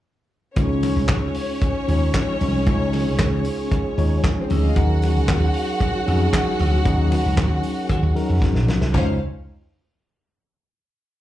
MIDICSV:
0, 0, Header, 1, 6, 480
1, 0, Start_track
1, 0, Key_signature, -5, "major"
1, 0, Tempo, 523560
1, 516, Time_signature, 4, 2, 24, 8
1, 10275, End_track
2, 0, Start_track
2, 0, Title_t, "String section"
2, 0, Program_c, 0, 48
2, 512, Note_on_c, 0, 73, 97
2, 513, Note_on_c, 0, 61, 86
2, 3955, Note_off_c, 0, 73, 0
2, 3956, Note_off_c, 0, 61, 0
2, 4037, Note_on_c, 0, 60, 58
2, 4037, Note_on_c, 0, 72, 59
2, 4119, Note_off_c, 0, 60, 0
2, 4120, Note_off_c, 0, 72, 0
2, 4122, Note_on_c, 0, 73, 69
2, 4123, Note_on_c, 0, 61, 67
2, 4197, Note_on_c, 0, 63, 73
2, 4197, Note_on_c, 0, 75, 82
2, 4202, Note_off_c, 0, 73, 0
2, 4203, Note_off_c, 0, 61, 0
2, 4276, Note_on_c, 0, 77, 99
2, 4277, Note_on_c, 0, 65, 79
2, 4280, Note_off_c, 0, 63, 0
2, 4280, Note_off_c, 0, 75, 0
2, 4351, Note_on_c, 0, 66, 98
2, 4351, Note_on_c, 0, 78, 105
2, 4359, Note_off_c, 0, 65, 0
2, 4359, Note_off_c, 0, 77, 0
2, 7915, Note_off_c, 0, 66, 0
2, 7915, Note_off_c, 0, 78, 0
2, 8196, Note_on_c, 0, 61, 94
2, 8198, Note_on_c, 0, 72, 94
2, 8201, Note_on_c, 0, 77, 99
2, 8419, Note_off_c, 0, 61, 0
2, 8420, Note_off_c, 0, 72, 0
2, 8422, Note_off_c, 0, 77, 0
2, 10275, End_track
3, 0, Start_track
3, 0, Title_t, "Tine electric piano"
3, 0, Program_c, 1, 4
3, 513, Note_on_c, 1, 56, 76
3, 514, Note_on_c, 1, 61, 68
3, 521, Note_on_c, 1, 63, 68
3, 522, Note_on_c, 1, 65, 77
3, 524, Note_on_c, 1, 73, 75
3, 677, Control_c, 1, 64, 127
3, 1127, Note_off_c, 1, 56, 0
3, 1127, Note_off_c, 1, 61, 0
3, 1131, Note_off_c, 1, 63, 0
3, 1131, Note_off_c, 1, 65, 0
3, 1132, Note_off_c, 1, 73, 0
3, 1716, Note_on_c, 1, 56, 68
3, 1720, Note_on_c, 1, 61, 69
3, 1725, Note_on_c, 1, 63, 70
3, 1727, Note_on_c, 1, 65, 70
3, 1730, Note_on_c, 1, 73, 80
3, 2177, Note_off_c, 1, 56, 0
3, 2179, Note_off_c, 1, 61, 0
3, 2181, Note_off_c, 1, 63, 0
3, 2182, Note_off_c, 1, 65, 0
3, 2183, Note_off_c, 1, 73, 0
3, 2437, Note_on_c, 1, 56, 74
3, 2439, Note_on_c, 1, 61, 64
3, 2448, Note_on_c, 1, 63, 72
3, 2450, Note_on_c, 1, 65, 68
3, 2451, Note_on_c, 1, 73, 80
3, 3050, Note_off_c, 1, 56, 0
3, 3051, Note_off_c, 1, 61, 0
3, 3055, Note_off_c, 1, 63, 0
3, 3056, Note_off_c, 1, 65, 0
3, 3057, Note_off_c, 1, 73, 0
3, 3643, Note_on_c, 1, 56, 82
3, 3648, Note_on_c, 1, 61, 67
3, 3652, Note_on_c, 1, 65, 68
3, 3653, Note_on_c, 1, 63, 75
3, 3655, Note_on_c, 1, 73, 91
3, 4100, Note_off_c, 1, 56, 0
3, 4103, Note_off_c, 1, 61, 0
3, 4105, Note_off_c, 1, 63, 0
3, 4105, Note_off_c, 1, 65, 0
3, 4106, Note_off_c, 1, 73, 0
3, 4363, Note_on_c, 1, 54, 75
3, 4365, Note_on_c, 1, 61, 66
3, 4372, Note_on_c, 1, 63, 72
3, 4372, Note_on_c, 1, 66, 67
3, 4375, Control_c, 1, 64, 0
3, 4375, Note_on_c, 1, 70, 79
3, 4529, Control_c, 1, 64, 127
3, 4972, Note_off_c, 1, 54, 0
3, 4973, Note_off_c, 1, 61, 0
3, 4976, Note_off_c, 1, 63, 0
3, 4976, Note_off_c, 1, 66, 0
3, 4978, Note_off_c, 1, 70, 0
3, 5557, Note_on_c, 1, 54, 78
3, 5559, Note_on_c, 1, 61, 66
3, 5566, Note_on_c, 1, 63, 71
3, 5570, Note_on_c, 1, 66, 71
3, 5572, Note_on_c, 1, 68, 88
3, 6015, Note_off_c, 1, 54, 0
3, 6017, Note_off_c, 1, 61, 0
3, 6020, Note_off_c, 1, 63, 0
3, 6022, Note_off_c, 1, 66, 0
3, 6023, Note_off_c, 1, 68, 0
3, 6277, Note_on_c, 1, 54, 75
3, 6282, Note_on_c, 1, 61, 73
3, 6287, Note_on_c, 1, 66, 72
3, 6288, Note_on_c, 1, 63, 79
3, 6294, Note_on_c, 1, 68, 86
3, 6887, Note_off_c, 1, 54, 0
3, 6890, Note_off_c, 1, 61, 0
3, 6892, Note_off_c, 1, 66, 0
3, 6893, Note_off_c, 1, 63, 0
3, 6896, Note_off_c, 1, 68, 0
3, 7466, Note_on_c, 1, 54, 85
3, 7472, Note_on_c, 1, 61, 67
3, 7476, Note_on_c, 1, 63, 67
3, 7479, Note_on_c, 1, 66, 78
3, 7481, Note_on_c, 1, 70, 83
3, 7929, Note_off_c, 1, 54, 0
3, 7931, Note_off_c, 1, 61, 0
3, 7933, Note_off_c, 1, 63, 0
3, 7935, Note_off_c, 1, 66, 0
3, 7936, Note_off_c, 1, 70, 0
3, 8192, Note_on_c, 1, 61, 64
3, 8192, Note_on_c, 1, 63, 74
3, 8192, Note_on_c, 1, 72, 75
3, 8193, Note_on_c, 1, 56, 71
3, 8193, Note_on_c, 1, 65, 65
3, 8207, Control_c, 1, 64, 0
3, 8417, Note_off_c, 1, 56, 0
3, 8417, Note_off_c, 1, 61, 0
3, 8417, Note_off_c, 1, 63, 0
3, 8417, Note_off_c, 1, 65, 0
3, 8417, Note_off_c, 1, 72, 0
3, 10275, End_track
4, 0, Start_track
4, 0, Title_t, "French horn section"
4, 0, Program_c, 2, 60
4, 520, Note_on_c, 2, 61, 65
4, 526, Note_on_c, 2, 56, 73
4, 526, Note_on_c, 2, 68, 74
4, 528, Note_on_c, 2, 49, 68
4, 4327, Note_off_c, 2, 61, 0
4, 4330, Note_off_c, 2, 56, 0
4, 4331, Note_off_c, 2, 49, 0
4, 4363, Note_on_c, 2, 51, 74
4, 4363, Note_on_c, 2, 66, 81
4, 4367, Note_on_c, 2, 61, 74
4, 8034, Note_off_c, 2, 51, 0
4, 8034, Note_off_c, 2, 61, 0
4, 8034, Note_off_c, 2, 66, 0
4, 8034, Note_off_c, 2, 68, 0
4, 8189, Note_on_c, 2, 65, 60
4, 8190, Note_on_c, 2, 49, 68
4, 8191, Note_on_c, 2, 61, 63
4, 8196, Note_on_c, 2, 72, 68
4, 8415, Note_off_c, 2, 65, 0
4, 8416, Note_off_c, 2, 49, 0
4, 8417, Note_off_c, 2, 61, 0
4, 8419, Note_off_c, 2, 72, 0
4, 10275, End_track
5, 0, Start_track
5, 0, Title_t, "Slap bass"
5, 0, Program_c, 3, 36
5, 520, Note_on_c, 3, 37, 85
5, 784, Note_off_c, 3, 37, 0
5, 880, Note_on_c, 3, 36, 78
5, 968, Note_off_c, 3, 36, 0
5, 1000, Note_on_c, 3, 37, 87
5, 1176, Note_off_c, 3, 37, 0
5, 1726, Note_on_c, 3, 39, 82
5, 1901, Note_off_c, 3, 39, 0
5, 2209, Note_on_c, 3, 36, 91
5, 2450, Note_off_c, 3, 36, 0
5, 2450, Note_on_c, 3, 37, 91
5, 2805, Note_off_c, 3, 37, 0
5, 2805, Note_on_c, 3, 36, 87
5, 2892, Note_off_c, 3, 36, 0
5, 2927, Note_on_c, 3, 37, 77
5, 3102, Note_off_c, 3, 37, 0
5, 3645, Note_on_c, 3, 39, 92
5, 3820, Note_off_c, 3, 39, 0
5, 4133, Note_on_c, 3, 38, 81
5, 4305, Note_off_c, 3, 38, 0
5, 4366, Note_on_c, 3, 39, 83
5, 4728, Note_off_c, 3, 39, 0
5, 4728, Note_on_c, 3, 37, 81
5, 4814, Note_off_c, 3, 37, 0
5, 4845, Note_on_c, 3, 39, 80
5, 5019, Note_off_c, 3, 39, 0
5, 5573, Note_on_c, 3, 41, 93
5, 5744, Note_off_c, 3, 41, 0
5, 6051, Note_on_c, 3, 38, 92
5, 6223, Note_off_c, 3, 38, 0
5, 6288, Note_on_c, 3, 39, 86
5, 6549, Note_off_c, 3, 39, 0
5, 6654, Note_on_c, 3, 37, 93
5, 6736, Note_off_c, 3, 37, 0
5, 6764, Note_on_c, 3, 39, 82
5, 6938, Note_off_c, 3, 39, 0
5, 7241, Note_on_c, 3, 51, 99
5, 7328, Note_off_c, 3, 51, 0
5, 7358, Note_on_c, 3, 39, 83
5, 7446, Note_off_c, 3, 39, 0
5, 7604, Note_on_c, 3, 41, 97
5, 7689, Note_off_c, 3, 41, 0
5, 7841, Note_on_c, 3, 34, 93
5, 7967, Note_off_c, 3, 34, 0
5, 7967, Note_on_c, 3, 35, 81
5, 8051, Note_off_c, 3, 35, 0
5, 8081, Note_on_c, 3, 36, 85
5, 8167, Note_off_c, 3, 36, 0
5, 8198, Note_on_c, 3, 37, 86
5, 8420, Note_off_c, 3, 37, 0
5, 10275, End_track
6, 0, Start_track
6, 0, Title_t, "Drums"
6, 514, Note_on_c, 9, 42, 62
6, 519, Note_on_c, 9, 36, 115
6, 523, Note_on_c, 9, 62, 51
6, 606, Note_off_c, 9, 42, 0
6, 611, Note_off_c, 9, 36, 0
6, 614, Note_off_c, 9, 62, 0
6, 758, Note_on_c, 9, 46, 61
6, 763, Note_on_c, 9, 62, 53
6, 849, Note_off_c, 9, 46, 0
6, 855, Note_off_c, 9, 62, 0
6, 994, Note_on_c, 9, 38, 112
6, 995, Note_on_c, 9, 39, 92
6, 997, Note_on_c, 9, 36, 118
6, 998, Note_on_c, 9, 42, 60
6, 1004, Note_on_c, 9, 63, 81
6, 1085, Note_off_c, 9, 38, 0
6, 1086, Note_off_c, 9, 39, 0
6, 1089, Note_off_c, 9, 36, 0
6, 1089, Note_off_c, 9, 42, 0
6, 1096, Note_off_c, 9, 63, 0
6, 1232, Note_on_c, 9, 46, 70
6, 1324, Note_off_c, 9, 46, 0
6, 1481, Note_on_c, 9, 62, 57
6, 1482, Note_on_c, 9, 36, 108
6, 1486, Note_on_c, 9, 42, 56
6, 1573, Note_off_c, 9, 62, 0
6, 1574, Note_off_c, 9, 36, 0
6, 1577, Note_off_c, 9, 42, 0
6, 1727, Note_on_c, 9, 46, 54
6, 1731, Note_on_c, 9, 62, 35
6, 1819, Note_off_c, 9, 46, 0
6, 1822, Note_off_c, 9, 62, 0
6, 1960, Note_on_c, 9, 42, 62
6, 1963, Note_on_c, 9, 36, 99
6, 1965, Note_on_c, 9, 38, 101
6, 1966, Note_on_c, 9, 39, 86
6, 1977, Note_on_c, 9, 63, 72
6, 2052, Note_off_c, 9, 42, 0
6, 2055, Note_off_c, 9, 36, 0
6, 2057, Note_off_c, 9, 38, 0
6, 2058, Note_off_c, 9, 39, 0
6, 2069, Note_off_c, 9, 63, 0
6, 2205, Note_on_c, 9, 46, 54
6, 2213, Note_on_c, 9, 63, 78
6, 2297, Note_off_c, 9, 46, 0
6, 2305, Note_off_c, 9, 63, 0
6, 2441, Note_on_c, 9, 42, 57
6, 2446, Note_on_c, 9, 36, 120
6, 2451, Note_on_c, 9, 62, 55
6, 2533, Note_off_c, 9, 42, 0
6, 2538, Note_off_c, 9, 36, 0
6, 2543, Note_off_c, 9, 62, 0
6, 2686, Note_on_c, 9, 46, 72
6, 2693, Note_on_c, 9, 62, 48
6, 2778, Note_off_c, 9, 46, 0
6, 2785, Note_off_c, 9, 62, 0
6, 2924, Note_on_c, 9, 36, 109
6, 2926, Note_on_c, 9, 38, 104
6, 2926, Note_on_c, 9, 39, 84
6, 2929, Note_on_c, 9, 42, 63
6, 2933, Note_on_c, 9, 63, 71
6, 3016, Note_off_c, 9, 36, 0
6, 3017, Note_off_c, 9, 38, 0
6, 3018, Note_off_c, 9, 39, 0
6, 3021, Note_off_c, 9, 42, 0
6, 3024, Note_off_c, 9, 63, 0
6, 3158, Note_on_c, 9, 46, 66
6, 3250, Note_off_c, 9, 46, 0
6, 3406, Note_on_c, 9, 36, 102
6, 3407, Note_on_c, 9, 62, 59
6, 3410, Note_on_c, 9, 42, 51
6, 3498, Note_off_c, 9, 36, 0
6, 3499, Note_off_c, 9, 62, 0
6, 3502, Note_off_c, 9, 42, 0
6, 3652, Note_on_c, 9, 46, 51
6, 3744, Note_off_c, 9, 46, 0
6, 3885, Note_on_c, 9, 36, 115
6, 3885, Note_on_c, 9, 42, 66
6, 3890, Note_on_c, 9, 38, 104
6, 3891, Note_on_c, 9, 39, 86
6, 3897, Note_on_c, 9, 63, 73
6, 3976, Note_off_c, 9, 36, 0
6, 3977, Note_off_c, 9, 42, 0
6, 3982, Note_off_c, 9, 38, 0
6, 3983, Note_off_c, 9, 39, 0
6, 3989, Note_off_c, 9, 63, 0
6, 4124, Note_on_c, 9, 46, 55
6, 4131, Note_on_c, 9, 63, 78
6, 4215, Note_off_c, 9, 46, 0
6, 4223, Note_off_c, 9, 63, 0
6, 4363, Note_on_c, 9, 42, 66
6, 4367, Note_on_c, 9, 36, 110
6, 4376, Note_on_c, 9, 62, 46
6, 4454, Note_off_c, 9, 42, 0
6, 4458, Note_off_c, 9, 36, 0
6, 4467, Note_off_c, 9, 62, 0
6, 4603, Note_on_c, 9, 46, 62
6, 4616, Note_on_c, 9, 62, 54
6, 4694, Note_off_c, 9, 46, 0
6, 4708, Note_off_c, 9, 62, 0
6, 4843, Note_on_c, 9, 36, 121
6, 4846, Note_on_c, 9, 38, 107
6, 4847, Note_on_c, 9, 39, 87
6, 4848, Note_on_c, 9, 63, 72
6, 4850, Note_on_c, 9, 42, 64
6, 4934, Note_off_c, 9, 36, 0
6, 4938, Note_off_c, 9, 38, 0
6, 4939, Note_off_c, 9, 39, 0
6, 4940, Note_off_c, 9, 63, 0
6, 4942, Note_off_c, 9, 42, 0
6, 5078, Note_on_c, 9, 46, 71
6, 5169, Note_off_c, 9, 46, 0
6, 5322, Note_on_c, 9, 36, 99
6, 5326, Note_on_c, 9, 42, 53
6, 5328, Note_on_c, 9, 62, 63
6, 5414, Note_off_c, 9, 36, 0
6, 5417, Note_off_c, 9, 42, 0
6, 5419, Note_off_c, 9, 62, 0
6, 5570, Note_on_c, 9, 46, 48
6, 5571, Note_on_c, 9, 62, 33
6, 5661, Note_off_c, 9, 46, 0
6, 5662, Note_off_c, 9, 62, 0
6, 5803, Note_on_c, 9, 36, 99
6, 5806, Note_on_c, 9, 42, 76
6, 5810, Note_on_c, 9, 63, 67
6, 5811, Note_on_c, 9, 38, 123
6, 5812, Note_on_c, 9, 39, 97
6, 5894, Note_off_c, 9, 36, 0
6, 5898, Note_off_c, 9, 42, 0
6, 5902, Note_off_c, 9, 38, 0
6, 5902, Note_off_c, 9, 63, 0
6, 5903, Note_off_c, 9, 39, 0
6, 6046, Note_on_c, 9, 63, 76
6, 6048, Note_on_c, 9, 46, 54
6, 6138, Note_off_c, 9, 63, 0
6, 6140, Note_off_c, 9, 46, 0
6, 6282, Note_on_c, 9, 62, 53
6, 6284, Note_on_c, 9, 36, 122
6, 6285, Note_on_c, 9, 42, 62
6, 6374, Note_off_c, 9, 62, 0
6, 6376, Note_off_c, 9, 36, 0
6, 6377, Note_off_c, 9, 42, 0
6, 6524, Note_on_c, 9, 46, 64
6, 6526, Note_on_c, 9, 62, 54
6, 6616, Note_off_c, 9, 46, 0
6, 6618, Note_off_c, 9, 62, 0
6, 6759, Note_on_c, 9, 63, 73
6, 6760, Note_on_c, 9, 36, 123
6, 6764, Note_on_c, 9, 38, 112
6, 6765, Note_on_c, 9, 39, 86
6, 6768, Note_on_c, 9, 42, 69
6, 6850, Note_off_c, 9, 63, 0
6, 6852, Note_off_c, 9, 36, 0
6, 6856, Note_off_c, 9, 38, 0
6, 6857, Note_off_c, 9, 39, 0
6, 6860, Note_off_c, 9, 42, 0
6, 6997, Note_on_c, 9, 46, 66
6, 7088, Note_off_c, 9, 46, 0
6, 7237, Note_on_c, 9, 62, 57
6, 7238, Note_on_c, 9, 36, 98
6, 7239, Note_on_c, 9, 42, 51
6, 7328, Note_off_c, 9, 62, 0
6, 7330, Note_off_c, 9, 36, 0
6, 7331, Note_off_c, 9, 42, 0
6, 7483, Note_on_c, 9, 46, 51
6, 7575, Note_off_c, 9, 46, 0
6, 7717, Note_on_c, 9, 36, 110
6, 7721, Note_on_c, 9, 63, 80
6, 7725, Note_on_c, 9, 38, 56
6, 7809, Note_off_c, 9, 36, 0
6, 7813, Note_off_c, 9, 63, 0
6, 7816, Note_off_c, 9, 38, 0
6, 7841, Note_on_c, 9, 38, 64
6, 7933, Note_off_c, 9, 38, 0
6, 7961, Note_on_c, 9, 63, 75
6, 7962, Note_on_c, 9, 38, 97
6, 8053, Note_off_c, 9, 63, 0
6, 8054, Note_off_c, 9, 38, 0
6, 8080, Note_on_c, 9, 38, 79
6, 8172, Note_off_c, 9, 38, 0
6, 8196, Note_on_c, 9, 43, 108
6, 8196, Note_on_c, 9, 55, 78
6, 8198, Note_on_c, 9, 36, 103
6, 8199, Note_on_c, 9, 62, 80
6, 8288, Note_off_c, 9, 43, 0
6, 8288, Note_off_c, 9, 55, 0
6, 8290, Note_off_c, 9, 36, 0
6, 8291, Note_off_c, 9, 62, 0
6, 10275, End_track
0, 0, End_of_file